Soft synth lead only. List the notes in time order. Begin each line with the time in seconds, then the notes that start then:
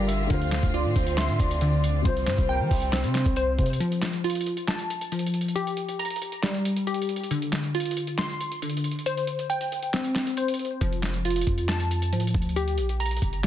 0.08 E5
0.30 F5
0.74 D5
0.96 C5
1.18 E5
1.40 D5
2.05 C5
2.49 A#4
2.71 C5